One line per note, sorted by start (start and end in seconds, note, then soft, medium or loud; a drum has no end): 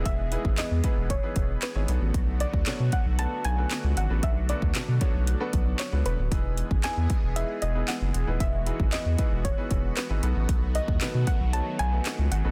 0.00 1.84 E3 medium
0.00 1.84 G#3 medium
0.00 0.19 B3 medium
0.00 3.93 B3 medium
0.00 0.19 D#4 medium
0.00 0.19 E4 medium
0.00 0.19 G#4 medium
0.00 1.84 G#4 loud
0.00 0.19 B4 medium
0.06 0.37 E1 loud
0.06 0.59 E5 loud
0.06 kick loud
0.06 closed hi-hat medium
0.32 0.67 B3 medium
0.32 0.67 D#4 medium
0.32 0.67 E4 medium
0.32 0.67 G#4 medium
0.32 0.67 B4 medium
0.32 closed hi-hat medium
0.45 0.55 G#1 medium
0.45 kick medium
0.58 0.63 E2 soft
0.58 1.12 D#5 medium
0.58 snare medium
0.58 clap loud
0.58 closed hi-hat loud
0.71 0.81 E2 loud
0.84 1.10 B3 medium
0.84 1.10 D#4 medium
0.84 1.11 E4 medium
0.84 1.11 G#4 medium
0.84 1.11 B4 medium
0.84 kick medium
0.84 closed hi-hat medium
0.97 1.18 E1 loud
1.10 1.64 C#5 loud
1.10 kick loud
1.10 closed hi-hat medium
1.23 1.58 B3 medium
1.23 1.58 D#4 medium
1.23 1.58 E4 medium
1.23 1.59 G#4 medium
1.23 1.59 B4 medium
1.36 1.57 E1 medium
1.36 kick medium
1.36 closed hi-hat medium
1.62 1.99 B4 medium
1.62 snare medium
1.62 clap loud
1.62 closed hi-hat medium
1.75 1.86 G#1 medium
1.75 1.87 B3 medium
1.75 1.88 D#4 medium
1.75 1.88 E4 medium
1.75 1.88 G#4 medium
1.75 1.88 C#5 loud
1.88 1.99 B1 loud
1.88 6.28 D3 medium
1.88 6.28 F#3 medium
1.88 6.28 A3 medium
1.88 2.51 B3 medium
1.88 2.51 D4 medium
1.88 6.28 F#4 medium
1.88 2.51 F#4 medium
1.88 2.51 A4 medium
1.88 2.51 B4 medium
1.88 closed hi-hat medium
2.01 2.12 A1 medium
2.14 2.45 B1 loud
2.14 kick loud
2.14 closed hi-hat medium
2.40 2.94 D5 medium
2.40 closed hi-hat medium
2.54 2.64 D2 medium
2.54 kick medium
2.66 2.72 B2 soft
2.66 3.02 B3 medium
2.66 3.02 D4 medium
2.66 3.02 F#4 medium
2.66 3.02 A4 medium
2.66 3.02 C#5 medium
2.66 snare medium
2.66 clap loud
2.66 closed hi-hat medium
2.80 2.90 B2 medium
2.92 3.20 F#5 loud
2.92 kick medium
2.92 closed hi-hat medium
3.06 3.26 B1 loud
3.19 3.45 B3 medium
3.19 3.45 D4 medium
3.19 3.45 F#4 medium
3.19 3.45 A4 medium
3.19 3.45 B4 medium
3.19 3.43 A5 loud
3.19 closed hi-hat loud
3.45 3.65 B1 medium
3.45 3.99 G#5 loud
3.45 closed hi-hat medium
3.58 3.93 B3 medium
3.58 3.93 D4 medium
3.58 3.93 F#4 medium
3.58 3.93 A4 medium
3.58 3.93 B4 medium
3.71 snare medium
3.71 clap loud
3.71 closed hi-hat medium
3.84 3.94 C#2 loud
3.97 4.07 G#1 loud
3.97 6.29 D4 medium
3.97 4.21 F#5 medium
3.97 closed hi-hat medium
4.10 4.20 A1 medium
4.10 4.37 B3 medium
4.10 4.37 D4 medium
4.10 4.37 F#4 medium
4.10 4.37 A4 medium
4.10 4.37 B4 medium
4.23 4.54 B1 loud
4.23 4.35 E5 loud
4.23 kick loud
4.23 closed hi-hat loud
4.49 4.84 B3 medium
4.49 4.85 D4 medium
4.49 4.85 F#4 medium
4.49 4.85 A4 medium
4.49 4.85 B4 medium
4.49 4.98 D5 medium
4.49 closed hi-hat medium
4.62 4.73 D2 loud
4.62 kick medium
4.75 4.80 B2 soft
4.75 snare medium
4.75 clap loud
4.75 closed hi-hat loud
4.88 4.99 B2 medium
5.01 5.28 B3 medium
5.01 5.28 D4 medium
5.01 5.28 F#4 medium
5.01 5.28 A4 medium
5.01 5.28 C#5 medium
5.01 kick medium
5.01 closed hi-hat medium
5.14 5.35 B1 medium
5.27 closed hi-hat medium
5.40 5.76 B3 loud
5.40 5.76 D4 medium
5.40 5.76 F#4 medium
5.40 5.76 A4 medium
5.40 5.76 B4 loud
5.53 5.74 B1 medium
5.53 kick medium
5.53 closed hi-hat medium
5.79 6.04 C#5 loud
5.79 snare loud
5.79 clap loud
5.79 closed hi-hat medium
5.92 6.03 C#2 medium
5.92 6.19 B3 medium
5.92 6.19 D4 medium
5.92 6.19 F#4 medium
5.92 6.19 A4 medium
5.92 6.19 B4 loud
6.06 6.16 E1 loud
6.06 6.54 B4 loud
6.06 closed hi-hat medium
6.19 6.29 D1 medium
6.31 6.63 E1 loud
6.31 10.19 E3 medium
6.31 10.19 G#3 medium
6.31 6.67 B3 medium
6.31 12.51 B3 medium
6.31 6.67 D#4 medium
6.31 6.67 E4 medium
6.31 6.67 G#4 medium
6.31 8.38 G#4 loud
6.31 6.67 B4 loud
6.31 kick loud
6.31 closed hi-hat medium
6.58 closed hi-hat medium
6.71 6.81 G#1 medium
6.71 kick medium
6.84 6.89 E2 soft
6.84 7.19 B3 medium
6.84 7.19 D#4 medium
6.84 7.19 E4 medium
6.84 7.19 G#4 medium
6.84 7.19 B4 medium
6.84 7.32 G#5 loud
6.84 snare medium
6.84 clap loud
6.84 closed hi-hat loud
6.97 7.07 E2 loud
7.10 kick medium
7.10 closed hi-hat medium
7.23 7.44 E1 medium
7.36 7.62 B3 medium
7.36 7.62 D#4 medium
7.36 7.62 E4 medium
7.36 7.63 G#4 medium
7.36 7.63 B4 medium
7.36 7.48 E5 loud
7.36 closed hi-hat loud
7.62 7.83 E1 medium
7.62 7.86 D#5 loud
7.62 closed hi-hat medium
7.75 8.10 B3 medium
7.75 8.10 D#4 medium
7.75 8.11 E4 medium
7.75 8.11 G#4 medium
7.75 8.11 B4 medium
7.88 8.37 F#5 loud
7.88 snare loud
7.88 clap loud
7.88 closed hi-hat medium
8.01 8.12 F#1 medium
8.14 8.25 E1 loud
8.14 closed hi-hat medium
8.27 8.38 D#1 loud
8.27 8.54 B3 medium
8.27 8.54 D#4 medium
8.27 8.54 E4 medium
8.27 8.54 G#4 medium
8.27 8.54 B4 medium
8.40 8.71 E1 loud
8.40 12.51 F#4 loud
8.40 8.94 E5 loud
8.40 kick loud
8.40 closed hi-hat medium
8.66 9.02 B3 medium
8.66 9.02 D#4 medium
8.66 9.02 E4 medium
8.66 9.02 G#4 medium
8.66 9.02 B4 medium
8.66 closed hi-hat medium
8.80 8.90 G#1 loud
8.80 kick medium
8.93 8.98 E2 soft
8.93 9.46 D#5 medium
8.93 snare medium
8.93 clap loud
8.93 closed hi-hat medium
9.05 9.16 E2 medium
9.18 9.45 B3 medium
9.18 9.45 D#4 medium
9.18 9.45 E4 medium
9.18 9.45 G#4 medium
9.18 9.45 B4 medium
9.18 kick medium
9.18 closed hi-hat medium
9.32 9.52 E1 medium
9.45 9.93 C#5 medium
9.45 kick loud
9.45 closed hi-hat loud
9.58 9.93 B3 medium
9.58 9.93 D#4 medium
9.58 9.93 E4 medium
9.58 9.93 G#4 medium
9.58 9.93 B4 medium
9.71 9.92 E1 medium
9.71 kick medium
9.71 closed hi-hat medium
9.97 10.33 B4 medium
9.97 snare medium
9.97 clap loud
9.97 closed hi-hat medium
10.10 10.20 G#1 medium
10.10 10.21 B3 medium
10.10 10.21 D#4 medium
10.10 10.23 E4 medium
10.10 10.23 G#4 medium
10.10 10.21 B4 medium
10.23 10.33 B1 loud
10.23 12.51 D#3 medium
10.23 12.51 F#3 medium
10.23 12.51 A3 medium
10.23 10.85 B3 medium
10.23 10.85 D#4 medium
10.23 10.85 F#4 medium
10.23 10.86 A4 medium
10.23 10.86 B4 medium
10.23 closed hi-hat medium
10.36 10.46 A1 loud
10.49 10.80 B1 loud
10.49 kick loud
10.49 closed hi-hat medium
10.75 11.29 D#5 medium
10.75 closed hi-hat medium
10.88 10.99 D#2 loud
10.88 kick medium
11.01 11.06 B2 soft
11.01 11.36 B3 medium
11.01 11.36 D#4 medium
11.01 11.36 F#4 medium
11.01 11.37 A4 medium
11.01 11.37 B4 medium
11.01 snare medium
11.01 clap loud
11.01 closed hi-hat loud
11.14 11.25 B2 loud
11.27 11.54 F#5 loud
11.27 kick medium
11.27 closed hi-hat medium
11.40 11.61 B1 medium
11.53 11.80 B3 medium
11.53 11.80 D#4 medium
11.53 11.80 F#4 medium
11.53 11.80 A4 medium
11.53 11.80 C#5 medium
11.53 11.78 A5 loud
11.53 closed hi-hat medium
11.79 12.00 B1 medium
11.79 12.33 G#5 loud
11.79 closed hi-hat medium
11.92 12.28 B3 medium
11.92 12.28 D#4 medium
11.92 12.28 F#4 medium
11.92 12.28 A4 medium
11.92 12.28 B4 medium
12.06 snare loud
12.06 clap loud
12.06 closed hi-hat medium
12.19 12.29 C#2 medium
12.31 12.42 G#1 medium
12.31 12.51 F#5 medium
12.31 closed hi-hat medium
12.44 12.51 A1 medium
12.44 12.51 B3 medium
12.44 12.51 D#4 medium
12.44 12.51 F#4 medium
12.44 12.51 A4 medium
12.44 12.51 B4 medium